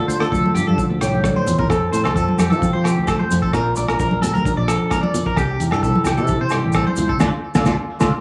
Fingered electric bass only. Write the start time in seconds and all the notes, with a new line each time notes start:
0.08 D2
0.21 D2
0.32 D2
0.55 G2
0.68 G2
0.90 D2
1.02 C2
1.24 D2
1.48 E2
1.69 F2
1.93 A2
2.06 C2
2.16 F2
2.39 F2
2.51 F3
2.75 F3
2.98 D2
3.33 F2
3.53 A#1
3.77 A#1
3.89 A#1
3.99 A#1
4.22 D2
4.35 D2
4.57 A#1
5.37 C2
5.60 E2
5.71 G2
5.83 C2
6.05 C2
6.18 C3
6.41 C3
6.64 A1
6.98 C#2
7.20 D2
7.56 D2
7.66 D2
8.01 D2